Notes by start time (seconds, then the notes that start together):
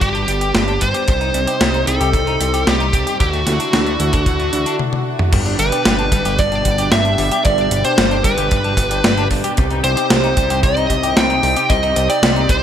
Already playing: G3 B3 D4
0.01 G1 G3 G4, kick, closed hi-hat
0.15 D4, closed hi-hat
0.28 G1 G3, closed hi-hat
0.41 G4, closed hi-hat
0.55 G1 G3, snare, closed hi-hat
0.68 D4, closed hi-hat
0.81 G1 G3 C5, kick, closed hi-hat
0.94 G4, closed hi-hat
1.08 C2 C3 G3 C4 D#4, kick, closed hi-hat
1.21 D#4, closed hi-hat
1.34 C2 G3, closed hi-hat
1.47 G4, closed hi-hat
1.61 C2 G3, snare, closed hi-hat
1.74 D#4, closed hi-hat
1.87 C2 G3 A4, closed hi-hat
2.00 C2 G4, closed hi-hat
2.13 C2 G3, kick, closed hi-hat
2.27 D#4, closed hi-hat
2.40 C2 G3, closed hi-hat
2.54 G4, closed hi-hat
2.67 C2 G3 G4, snare, closed hi-hat
2.80 D#4, closed hi-hat
2.93 C2 G3, kick, closed hi-hat
3.07 G4, closed hi-hat
3.20 D2 D3 E3 D4 E4 F#4, kick, closed hi-hat
3.33 A3, closed hi-hat
3.46 D2 E3, snare, closed hi-hat
3.60 D4, closed hi-hat
3.73 D2 E3, snare, closed hi-hat
3.86 A3, closed hi-hat
4.00 D2 E3, closed hi-hat
4.13 D2 D4, kick, closed hi-hat
4.26 D2 E3, kick, closed hi-hat
4.39 A3, closed hi-hat
4.53 D2 E3, closed hi-hat
4.66 D4, closed hi-hat
4.79 high tom
4.93 high tom
5.19 mid tom
5.32 G1 B2 G3 D4 G4, kick, closed hi-hat, crash
5.46 G3 D4, closed hi-hat
5.59 G1 G3 D4 B4, closed hi-hat
5.72 D4 G4, closed hi-hat
5.85 G1 G3, snare, closed hi-hat
5.99 D4, closed hi-hat
6.12 G1 G3, kick, closed hi-hat
6.25 G1 G3 G4, closed hi-hat
6.39 G1 G3 D5, kick, closed hi-hat
6.52 G3 D4, closed hi-hat
6.65 G1 G3 B3, kick, closed hi-hat
6.78 D4 G4, closed hi-hat
6.92 G1 G3 E5, snare, closed hi-hat
7.05 D4, closed hi-hat
7.18 G1 G3, open hi-hat
7.31 G3 G4, closed hi-hat
7.45 G1 G3 D5, kick, closed hi-hat
7.58 G3 D4, closed hi-hat
7.71 G1 G3 D4, closed hi-hat
7.85 D4 G4 C5, closed hi-hat
7.98 G1 G3, snare, closed hi-hat
8.11 D4, closed hi-hat
8.24 G1 G3 B4, kick, closed hi-hat
8.38 G1 G3 G4, closed hi-hat
8.51 G1 G3, kick, closed hi-hat
8.64 G3 D4, closed hi-hat
8.77 G1 G3 B3, kick, closed hi-hat
8.91 D4 G4, closed hi-hat
9.04 G1 G3, snare, closed hi-hat
9.17 D4, closed hi-hat
9.31 G1 G3, kick, open hi-hat
9.44 G3 G4, closed hi-hat
9.57 C2 C3 G3 C4 D#4, kick, closed hi-hat
9.71 C4 D#4, closed hi-hat
9.84 C2 G3 G4 C5, closed hi-hat
9.97 G4, closed hi-hat
10.10 C2 G3 C4, snare, closed hi-hat
10.24 D#4 G4, closed hi-hat
10.37 C2 G3 C4, kick, closed hi-hat
10.50 C2 C4 G4, closed hi-hat
10.63 C2 G3 C4 D#5, kick, closed hi-hat
10.77 C4 D#4, closed hi-hat
10.90 C2 G3 D#4, kick, closed hi-hat
11.03 G4, closed hi-hat
11.16 C2 G3 C4 G5, snare, closed hi-hat
11.30 D#4 G4, closed hi-hat
11.43 C2 G3 C4, open hi-hat
11.56 C4 G4, closed hi-hat
11.69 C2 G3 C4 D#5, kick, closed hi-hat
11.83 C4 D#4, closed hi-hat
11.96 C2 G3 G4, closed hi-hat
12.09 G4 D5, closed hi-hat
12.22 C2 G3 C4, snare, closed hi-hat
12.36 D#4 G4, closed hi-hat
12.49 C2 G3 C4 C5, kick, closed hi-hat